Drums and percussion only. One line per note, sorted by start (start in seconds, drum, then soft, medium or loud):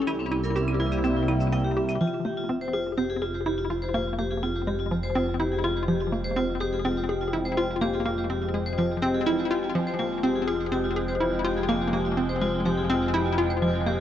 0.07 claves medium
0.07 shaker soft
0.32 claves soft
0.44 shaker medium
0.56 shaker soft
0.68 claves medium
0.92 claves soft
0.92 shaker medium
1.04 shaker soft
1.28 claves medium
1.40 shaker medium
1.52 claves soft
1.52 shaker soft
1.89 claves medium
1.89 shaker medium